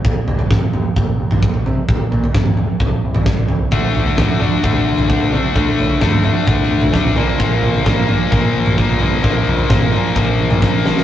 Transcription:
<<
  \new Staff \with { instrumentName = "Steel-string acoustic guitar" } { \time 4/4 \key bes \major \tempo 4 = 130 r1 | r1 | <d f a d'>8 <f a d'>8 <d f a d'>8 <f a d'>4. <d f a d'>8 <f a d'>8 | <d f a d'>8 <f a d'>8 <d f a d'>8 <f a d'>4. <d f a d'>8 <bes, f bes d'>8 |
<bes, f bes d'>8 <f bes d'>8 <bes, f bes d'>8 <f bes d'>4. <bes, f bes d'>8 <f bes d'>8 | <bes, f bes d'>8 <f bes d'>8 <bes, f bes d'>8 <f bes d'>4. <bes, f bes d'>8 <f bes d'>8 | }
  \new Staff \with { instrumentName = "Distorted electric guitar" } { \clef bass \time 4/4 \key bes \major r1 | r1 | <d a d'>4 <d a d'>8 <d a d'>8 <d a d'>4 <d a d'>8 <d a d'>8 | <d a d'>4 <d a d'>8 <d a d'>8 <d a d'>4 <d a d'>8 <bes, f bes>8 |
<bes, f bes>4 <bes, f bes>8 <bes, f bes>8 <bes, f bes>4 <bes, f bes>8 <bes, f bes>8 | <bes, f bes>4 <bes, f bes>8 <bes, f bes>8 <bes, f bes>4 <bes, f bes>8 <bes, f bes>8 | }
  \new Staff \with { instrumentName = "Picked electric bass" } { \clef bass \time 4/4 \key bes \major ees,8 ees,8 ees,8 ees,8 ees,8 ees,8 ees,8 c8 | ees,8 bes,8 ees,4 c,8 c,8 aes,,8 c,8 | d,8 d,8 d,8 d,8 d,8 d,8 d,8 c8 | d,8 a,8 d,4 d,8 d,8 d,8 bes,,8 |
bes,,8 bes,,8 bes,,8 bes,,8 bes,,8 bes,,8 bes,,8 g,8 | bes,,8 f,8 bes,,4 bes,,8 bes,,8 bes,,8 g,,8 | }
  \new DrumStaff \with { instrumentName = "Drums" } \drummode { \time 4/4 <bd tomfh>8 tomfh16 tomfh16 <bd sn toml>8 toml8 <bd tomfh>8. <tomfh toml>16 bd16 tomfh16 tomfh8 | <bd tomfh>8 tomfh16 tomfh16 <bd sn toml>16 toml16 toml8 <bd tomfh>8. <tomfh toml>16 <bd sn>16 tomfh16 tomfh8 | <bd tomfh>8 tomfh16 tomfh16 <bd sn toml>8 toml8 <bd tomfh>8. <tomfh toml>16 bd16 tomfh16 tomfh8 | <bd tomfh>8 tomfh16 tomfh16 <bd sn toml>16 toml16 toml8 <bd tomfh>8. <tomfh toml>16 <bd sn>16 tomfh16 tomfh8 |
<bd tomfh>8 tomfh16 tomfh16 <bd sn toml>8 toml8 <bd tomfh>8. <tomfh toml>16 bd16 tomfh16 tomfh8 | <bd tomfh>8 tomfh16 tomfh16 <bd sn toml>16 toml16 toml8 <bd tomfh>8. <tomfh toml>16 <bd sn>8 sn16 sn16 | }
>>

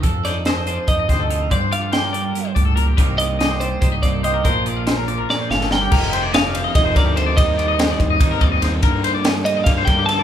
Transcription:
<<
  \new Staff \with { instrumentName = "Clean electric guitar" } { \time 7/8 \key f \mixolydian \tempo 4 = 143 r8 d''8 c''8 c''8 ees''4. | d''8 f''8 g''4. r4 | r8 ees''4 c''8 c''8 d''8 ees''8 | bes'2 d''8 f''8 g''8~ |
g''4 f''4 ees''8 d''8 c''8 | ees''2. r8 | r4. ees''8 f''8 g''8 a''8 | }
  \new Staff \with { instrumentName = "Clean electric guitar" } { \time 7/8 \key f \mixolydian a'8 c''16 a'16 ees''16 c''16 d''16 c''8 ees''16 c''16 a'16 c''16 bes'16 | c''8 d''16 f''16 c''16 bes'16 d''16 bes'8 c''16 d''16 a'16 bes'16 g'16 | bes'8 d''16 bes'16 ees''16 c''16 d''16 c''8 ees''16 c''16 a'16 c''16 bes'16 | c''8 d''16 f''16 c''16 bes'16 d''16 bes'8 c''16 d''16 a'16 bes'16 g'16 |
bes'8 c''16 d''16 ees''16 d''16 c''16 ees''8 c''16 bes'16 g'16 a'16 d''16 | ees''8 d''16 ees''16 c''16 d''16 c''16 ees''8 bes'16 d''16 ees''16 c''16 a'16 | bes'8 c''16 d''16 ees''16 d''16 c''16 d''8 c''16 bes'16 g'16 a'16 d''16 | }
  \new Staff \with { instrumentName = "Clean electric guitar" } { \time 7/8 \key f \mixolydian << { a'8 ees'8 a'4 ees'8 c'8 a'8 | f'16 g'16 f'8 g'2~ g'8 | <g bes ees' g'>8 ees'8 g'4 ees'8 bes8 g'8 | <f d' f'>8 f'8 f'2~ f'8 |
r2. r8 | r2. r8 | r2. r8 | } \\ { <f, f>4. f4 c4 | g,4. g8 g,8 a,8 bes,8 | c4. g4 g,4 | bes,4. f8 bes,8 a,8 g,8 |
r2. r8 | r2. r8 | r2. r8 | } >> }
  \new Staff \with { instrumentName = "Overdriven electric guitar" } { \clef bass \time 7/8 \key f \mixolydian r2. r8 | r2. r8 | r2. r8 | r2. r8 |
<f, c ees a ees'>2 <f, c ees a ees'>4. | <ees g c' ees'>2 <ees g c' ees'>4. | <g, d g bes d'>2 <g, d g bes d'>4. | }
  \new Staff \with { instrumentName = "Fingered electric bass" } { \clef bass \time 7/8 \key f \mixolydian f,2 f,8 d,4 | g,2 r8 des,4 | c,2 c,8 c,4 | bes,,2 r8 g,,4 |
f,,2 f,,8 d,4 | ees,4. ees,8 ees16 r16 ees,8 ees,8 | g,2 g,8 g,4 | }
  \new DrumStaff \with { instrumentName = "Drums" } \drummode { \time 7/8 <hh bd>8 <hh sn>8 <hh sn>8 hh8 <hh bd>8 <hh bd sn>8 hh8 | <hh bd>8 hh8 <hh sn>8 hh8 hh8 <hh bd>8 hh8 | <hh bd>8 hh8 <hh sn>8 hh8 <hh bd>8 <hh bd>8 hh8 | <hh bd>8 hh8 <hh sn>8 hh8 sn8 sn16 sn16 sn8 |
<cymc bd>8 cymr8 <cymr sn>8 cymr8 <bd cymr sn>8 <bd cymr sn>8 cymr8 | <bd cymr>8 cymr8 <cymr sn>8 <bd cymr>8 <bd cymr>8 <bd cymr>8 <cymr sn>8 | <bd cymr>8 cymr8 <cymr sn>8 cymr8 <bd cymr sn>8 <bd cymr>8 <cymr sn>8 | }
>>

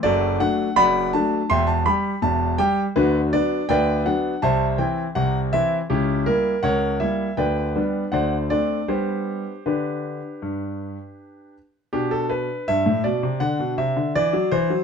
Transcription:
<<
  \new Staff \with { instrumentName = "Grand piano" } { \time 4/4 \key g \major \tempo 4 = 81 << { <fis' a' d''>8 fis''8 <d'' fis'' b''>8 a''8 <e'' g'' c'''>16 a''16 b''8 a''8 g''8 | <d' fis' b'>8 d''8 <b' d'' g''>8 fis''8 <c'' e'' a''>8 g''8 fis''8 e''8 | <cis' e' g'>8 ais'8 <ais' cis'' fis''>8 e''8 <b' d'' g''>4 <c'' d'' fis''>8 d''8 | <g' c''>4 <d' g' b'>2~ <d' g' b'>8 r8 |
g'16 a'16 b'8 e''8 d''8 fis''8 e''8 d''8 c''8 | } \\ { r1 | r1 | r1 | r1 |
d'2 d'2 | } >> }
  \new Staff \with { instrumentName = "Grand piano" } { \clef bass \time 4/4 \key g \major <fis,, fis,>8 <fis a d'>8 <fis,, fis,>8 <fis a d'>8 <e,, e,>8 <g g'>8 <e,, e,>8 <g g'>8 | <d, d>8 <fis b d'>8 <d, d>8 <fis b d'>8 <c, c>8 <e c' e'>8 <c, c>8 <e c' e'>8 | <cis, cis>8 <g ais e'>8 <cis, cis>8 <g ais e'>8 <d, d>8 <g b d'>8 <d, d>8 <a c' d'>8 | <g b d'>4 d4 g,4 r4 |
b,4 g,16 a,16 b,16 c16 d16 b,16 c16 d16 e16 fis16 e16 fis16 | }
>>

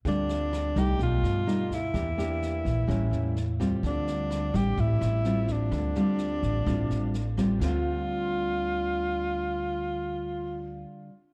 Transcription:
<<
  \new Staff \with { instrumentName = "Tenor saxophone" } { \time 4/4 \key d \minor \tempo 4 = 127 d'4. g'8 f'4. e'8~ | e'2.~ e'8 r8 | d'4. g'8 e'4. d'8~ | d'2.~ d'8 r8 |
f'1~ | f'1 | }
  \new Staff \with { instrumentName = "Nylon-string guitar" } { \time 4/4 \key d \minor << { <g c' f'>4. <g a ees'>4. <g a dis'>8 r8 | <bes d' g'>8 <bes d' g'>4. <g bes cis'>4 r8 <g c' f'>8~ | <g c' f'>4. <g c'>4. <g c' f'>4~ | <g c' f'>8 <g c' f'>4. <g c' f'>4 r8 <g c' f'>8~ |
<g c' f'>4 r2. | r1 | } \\ { d2 b,2 | e2 a,2 | d2 a,2 | d2 a,2 |
<d g c' f'>1~ | <d g c' f'>1 | } >> }
  \new Staff \with { instrumentName = "Upright bass" } { \clef bass \time 4/4 \key d \minor d,4. c,8 b,,8 g,4. | e,4. bes,,8 a,,8 e,4. | d,4. a,,8 a,,8 a,,4. | d,4. a,,8 a,,8 a,,4. |
d,1~ | d,1 | }
  \new DrumStaff \with { instrumentName = "Drums" } \drummode { \time 4/4 <bd sn>8 sn8 <ss sn>8 <bd sn>8 <bd sn>8 <ss sn>8 sn8 <bd sn>8 | <bd ss sn>8 sn8 sn8 <bd sn>8 <bd ss sn>8 sn8 sn8 <bd ss sn>8 | <bd sn>8 sn8 <ss sn>8 <bd sn>8 <bd sn>8 <ss sn>8 sn8 <bd sn>8 | <bd ss sn>8 sn8 sn8 <bd sn>8 <bd ss sn>8 sn8 sn8 <bd ss sn>8 |
sn4 r4 r4 r4 | r4 r4 r4 r4 | }
>>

